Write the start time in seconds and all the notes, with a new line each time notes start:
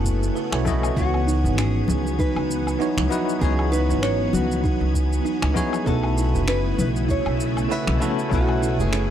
Already playing: F#1 C#3 A3 B3 C#4 E4 F#4 A4 B4 G#5
0.05 kick, shaker
0.23 shaker
0.35 B4, shaker
0.51 B1 A3 C#4 E4 F#4 C#5, finger snap, low woodblock
0.65 A3 C#4 E4 F#4 D#5, kick, high conga, shaker
0.83 low woodblock, shaker
0.94 C#2 E3 F#3 B3 F#4, kick, shaker
0.98 F#4 C#5
1.14 low woodblock
1.27 D#4, shaker
1.44 G#1, shaker
1.57 C#4 G#4, finger snap, shaker
1.88 C#2, high conga, shaker
2.07 shaker
2.19 D#4 B4, kick, shaker
2.36 C#2, low woodblock
2.51 shaker
2.67 low woodblock, shaker
2.79 B3 D#4 E4 F#4 C#5, shaker
2.97 C#2, finger snap, high conga
3.09 B3 D#4 E4 F#4 B4, shaker
3.29 shaker
3.39 C#2 E3 B3 D#4 G#4, kick, shaker
3.43 F#4 C#5
3.59 low woodblock
3.72 D#4 B4, shaker
3.89 G#1, shaker
4.02 C#4 C#5, finger snap, shaker
4.33 C#2 F#4, high conga, shaker
4.51 shaker
4.64 D#4, kick, shaker
4.81 C#2
4.94 kick, shaker
5.13 shaker
5.25 D#4, shaker
5.42 C#2, finger snap, low woodblock
5.54 B3 D#4 E4 F#4 G#4 C#5, kick, high conga, shaker
5.73 low woodblock, shaker
5.83 B1 C#3 A3 B3 C#4 E4 A4, kick, shaker
5.88 F#4 B4
6.03 low woodblock
6.17 E4, shaker
6.34 F#1, shaker
6.47 C#4 B4, finger snap, shaker
6.78 B1 B4, high conga, shaker
6.96 shaker
7.09 E4 C#5, kick, shaker
7.26 B1, low woodblock
7.40 shaker
7.57 low woodblock, shaker
7.69 A3 C#4 E4 F#4 B4 E5, shaker
7.87 B1, finger snap, high conga
7.99 A3 C#4 E4 F#4 A4, shaker
8.19 shaker
8.28 B1 A3 B3 C#4 E4, kick
8.32 F#4 B4, shaker
8.49 low woodblock
8.62 E4, shaker
8.79 F#1 G#4, shaker
8.93 C#4, finger snap, shaker